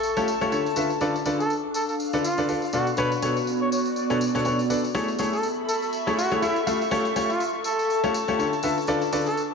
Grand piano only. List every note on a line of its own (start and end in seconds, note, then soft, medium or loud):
0.17 0.26 A3 medium
0.17 0.26 F4 medium
0.17 0.26 G4 medium
0.17 0.26 A4 medium
0.17 0.26 C#5 medium
0.41 0.50 A3 medium
0.41 0.50 F4 medium
0.41 0.50 G4 medium
0.41 0.50 A4 medium
0.41 0.50 C#5 medium
0.52 0.64 D3 medium
0.52 0.64 F4 medium
0.52 0.64 G4 medium
0.52 0.64 A4 medium
0.52 0.64 C#5 medium
0.77 0.88 D3 medium
0.77 0.88 F4 medium
0.77 0.88 A4 medium
0.77 0.88 B4 medium
0.77 0.88 E5 medium
1.01 1.13 D3 loud
1.01 1.13 F4 medium
1.01 1.13 A4 medium
1.01 1.13 B4 medium
1.01 1.13 D5 loud
1.26 1.38 D3 medium
1.26 1.38 F4 medium
1.26 1.38 A4 medium
1.26 1.38 B4 medium
1.26 1.38 D5 medium
2.13 2.23 D3 medium
2.13 2.23 F4 medium
2.13 2.23 A4 medium
2.13 2.23 B4 medium
2.13 2.23 D5 medium
2.38 2.47 D3 medium
2.38 2.47 F4 medium
2.38 2.47 A4 medium
2.38 2.47 B4 medium
2.38 2.47 D5 medium
2.49 2.61 F4 medium
2.49 2.61 A4 medium
2.49 2.61 B4 medium
2.49 2.61 D5 medium
2.73 2.85 B2 medium
2.73 2.85 D4 medium
2.73 2.85 A4 medium
2.73 2.85 B4 medium
2.73 2.85 D5 medium
2.98 3.10 B2 medium
2.98 3.10 D4 medium
2.98 3.10 A4 medium
2.98 3.10 B4 medium
2.98 3.10 C#5 loud
3.22 3.34 B2 medium
3.22 3.34 D4 medium
3.22 3.34 A4 medium
3.22 3.34 B4 medium
3.22 3.34 C#5 medium
4.10 4.19 B2 medium
4.10 4.19 D4 medium
4.10 4.19 A4 medium
4.10 4.19 B4 medium
4.10 4.19 C#5 medium
4.35 4.44 B2 medium
4.35 4.44 D4 medium
4.35 4.44 A4 medium
4.35 4.44 B4 medium
4.35 4.44 C#5 medium
4.45 4.57 B2 medium
4.45 4.57 D4 medium
4.45 4.57 A4 medium
4.45 4.57 B4 medium
4.45 4.57 C#5 medium
4.70 4.82 D4 medium
4.70 4.82 A4 medium
4.70 4.82 B4 medium
4.70 4.82 D5 medium
4.95 5.06 A3 loud
4.95 5.06 E4 medium
4.95 5.06 G#4 medium
4.95 5.06 A4 medium
4.95 5.06 C#5 loud
5.19 5.31 A3 medium
5.19 5.31 E4 medium
5.19 5.31 G#4 medium
5.19 5.31 A4 medium
5.19 5.31 C#5 medium
6.07 6.16 A3 medium
6.07 6.16 E4 medium
6.07 6.16 G#4 medium
6.07 6.16 A4 medium
6.07 6.16 C#5 medium
6.32 6.41 A3 medium
6.32 6.41 E4 medium
6.32 6.41 G#4 medium
6.32 6.41 A4 medium
6.32 6.41 C#5 medium
6.42 6.54 E4 medium
6.42 6.54 G#4 medium
6.42 6.54 A4 medium
6.42 6.54 C#5 medium
6.67 6.79 A3 medium
6.67 6.79 F4 medium
6.67 6.79 G4 medium
6.67 6.79 A4 medium
6.67 6.79 F5 medium
6.91 7.03 A3 loud
6.91 7.03 F4 medium
6.91 7.03 G4 medium
6.91 7.03 A4 medium
6.91 7.03 C#5 loud
7.16 7.28 A3 medium
7.16 7.28 F4 medium
7.16 7.28 G4 medium
7.16 7.28 A4 medium
7.16 7.28 C#5 medium
8.04 8.13 A3 medium
8.04 8.13 F4 medium
8.04 8.13 G4 medium
8.04 8.13 A4 medium
8.04 8.13 C#5 loud
8.28 8.37 A3 medium
8.28 8.37 F4 medium
8.28 8.37 G4 medium
8.28 8.37 A4 medium
8.28 8.37 C#5 medium
8.39 8.51 D3 medium
8.39 8.51 F4 medium
8.39 8.51 G4 medium
8.39 8.51 A4 medium
8.39 8.51 C#5 medium
8.63 8.75 D3 medium
8.63 8.75 F4 medium
8.63 8.75 A4 medium
8.63 8.75 B4 medium
8.63 8.75 E5 medium
8.88 9.00 D3 medium
8.88 9.00 F4 medium
8.88 9.00 A4 medium
8.88 9.00 B4 medium
8.88 9.00 D5 loud
9.13 9.24 D3 medium
9.13 9.24 F4 medium
9.13 9.24 A4 medium
9.13 9.25 B4 medium
9.13 9.24 D5 medium